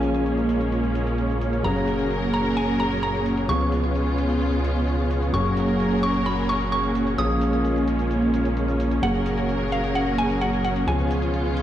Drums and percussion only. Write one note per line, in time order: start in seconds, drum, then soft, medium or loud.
0.03 closed hi-hat medium
0.03 shaker medium
0.15 closed hi-hat soft
0.15 shaker soft
0.26 closed hi-hat soft
0.26 shaker soft
0.38 closed hi-hat soft
0.38 shaker soft
0.49 closed hi-hat medium
0.49 shaker medium
0.61 closed hi-hat medium
0.61 shaker soft
0.72 closed hi-hat medium
0.72 shaker soft
0.84 closed hi-hat soft
0.84 shaker soft
0.95 closed hi-hat medium
0.95 shaker medium
1.07 closed hi-hat soft
1.07 shaker soft
1.18 closed hi-hat medium
1.18 shaker soft
1.30 closed hi-hat soft
1.30 shaker soft
1.41 closed hi-hat medium
1.41 shaker medium
1.53 closed hi-hat medium
1.53 shaker soft
1.64 closed hi-hat medium
1.64 shaker soft
1.76 closed hi-hat soft
1.76 shaker soft
1.88 closed hi-hat medium
1.88 shaker medium
1.99 closed hi-hat soft
1.99 shaker soft
2.11 closed hi-hat soft
2.11 shaker soft
2.22 closed hi-hat soft
2.34 closed hi-hat medium
2.34 shaker medium
2.45 closed hi-hat medium
2.45 shaker soft
2.57 closed hi-hat medium
2.57 shaker soft
2.68 closed hi-hat soft
2.80 closed hi-hat medium
2.80 shaker medium
2.91 closed hi-hat soft
2.91 shaker soft
3.03 closed hi-hat medium
3.03 shaker soft
3.14 closed hi-hat soft
3.14 shaker soft
3.26 closed hi-hat medium
3.26 shaker medium
3.38 closed hi-hat medium
3.38 shaker soft
3.49 closed hi-hat soft
3.49 shaker soft
3.61 closed hi-hat soft
3.61 shaker soft
3.72 closed hi-hat medium
3.72 shaker medium
3.84 closed hi-hat soft
3.84 shaker soft
3.95 closed hi-hat soft
3.95 shaker soft
4.07 closed hi-hat soft
4.18 closed hi-hat medium
4.18 shaker medium
4.30 closed hi-hat medium
4.30 shaker soft
4.41 closed hi-hat medium
4.41 shaker soft
4.53 closed hi-hat soft
4.64 closed hi-hat medium
4.64 shaker medium
4.76 closed hi-hat soft
4.76 shaker soft
4.88 closed hi-hat medium
4.88 shaker soft
4.99 closed hi-hat soft
4.99 shaker soft
5.11 closed hi-hat medium
5.11 shaker medium
5.22 closed hi-hat medium
5.22 shaker soft
5.34 closed hi-hat soft
5.34 shaker soft
5.45 closed hi-hat soft
5.45 shaker soft
5.57 closed hi-hat medium
5.57 shaker medium
5.68 closed hi-hat soft
5.68 shaker soft
5.80 closed hi-hat soft
5.80 shaker soft
5.91 closed hi-hat soft
6.03 closed hi-hat medium
6.03 shaker medium
6.15 closed hi-hat soft
6.15 shaker soft
6.26 closed hi-hat soft
6.26 shaker soft
6.38 closed hi-hat soft
6.49 closed hi-hat medium
6.49 shaker medium
6.61 closed hi-hat soft
6.61 shaker soft
6.72 closed hi-hat soft
6.72 shaker soft
6.84 closed hi-hat soft
6.84 shaker soft
6.95 closed hi-hat medium
6.95 shaker medium
7.07 closed hi-hat soft
7.07 shaker soft
7.18 closed hi-hat soft
7.18 shaker soft
7.30 closed hi-hat soft
7.30 shaker soft
7.41 closed hi-hat medium
7.41 shaker medium
7.53 closed hi-hat soft
7.53 shaker soft
7.65 closed hi-hat soft
7.65 shaker soft
7.76 closed hi-hat soft
7.76 shaker soft
7.88 closed hi-hat medium
7.88 shaker medium
7.99 closed hi-hat soft
7.99 shaker soft
8.11 closed hi-hat soft
8.11 shaker soft
8.22 closed hi-hat soft
8.34 closed hi-hat medium
8.34 shaker medium
8.45 closed hi-hat soft
8.45 shaker soft
8.57 closed hi-hat soft
8.57 shaker soft
8.68 closed hi-hat soft
8.68 shaker soft
8.80 closed hi-hat medium
8.80 shaker medium
8.91 closed hi-hat soft
8.91 shaker soft
9.03 closed hi-hat soft
9.03 shaker soft
9.15 closed hi-hat soft
9.15 shaker soft
9.26 closed hi-hat medium
9.26 shaker medium
9.38 closed hi-hat soft
9.38 shaker soft
9.49 closed hi-hat soft
9.49 shaker soft
9.61 closed hi-hat soft
9.72 closed hi-hat medium
9.72 shaker medium
9.84 closed hi-hat soft
9.84 shaker soft
9.95 closed hi-hat soft
9.95 shaker soft
10.07 closed hi-hat soft
10.18 closed hi-hat medium
10.18 shaker medium
10.30 closed hi-hat soft
10.30 shaker soft
10.41 closed hi-hat soft
10.41 shaker soft
10.53 closed hi-hat soft
10.53 shaker soft
10.64 closed hi-hat medium
10.64 shaker medium
10.76 closed hi-hat soft
10.76 shaker soft
10.88 closed hi-hat soft
10.88 shaker soft
10.99 closed hi-hat soft
10.99 shaker soft
11.11 closed hi-hat medium
11.11 shaker medium
11.22 closed hi-hat soft
11.22 shaker soft
11.34 closed hi-hat soft
11.34 shaker soft
11.45 closed hi-hat soft
11.57 closed hi-hat medium
11.57 shaker medium